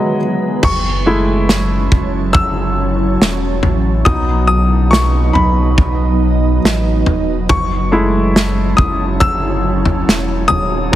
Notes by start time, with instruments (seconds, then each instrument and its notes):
Already playing: grand piano D#3 F#3 G#3 D#5 E5, ambient pad D#3 F#3 B3 G#4 B4
0.62 sub bass F#1, ambient pad F#3 C#4 E4 C#5 A5, grand piano C#6, kick, floor tom, crash
1.06 grand piano G#3 A3 E4
1.49 snare
1.92 sub bass F#1, kick, floor tom
2.33 grand piano E6, kick, floor tom
3.21 sub bass E1, snare
3.63 sub bass A1, floor tom
4.05 sub bass B1, grand piano F#3 B3 D#4 D#6, ambient pad B3 D#4 B4 D#5, kick, floor tom
4.47 grand piano D#6
4.91 grand piano C#6, snare
5.33 sub bass B1, grand piano B5, floor tom
5.78 kick, floor tom
6.63 sub bass A1, snare
7.06 sub bass E1, floor tom
7.49 sub bass F#1, ambient pad C#4 E4 C#5 A5, grand piano C#6, kick, floor tom
7.92 grand piano G#3 A3 E4
8.36 snare
8.77 sub bass F#1, grand piano D#6, kick, floor tom
9.20 grand piano E6, kick, floor tom
9.85 floor tom
10.07 sub bass E1, snare
10.48 sub bass D#1, grand piano D#6, floor tom
10.92 grand piano F#3 G#3